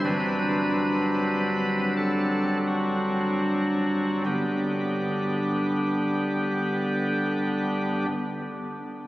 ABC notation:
X:1
M:3/4
L:1/8
Q:1/4=37
K:G
V:1 name="Pipe organ"
B3 A F2 | [G,,D,B,DG]6 |]
V:2 name="Pipe organ" clef=bass
[G,,,G,,F,CD]6 | G,,,6 |]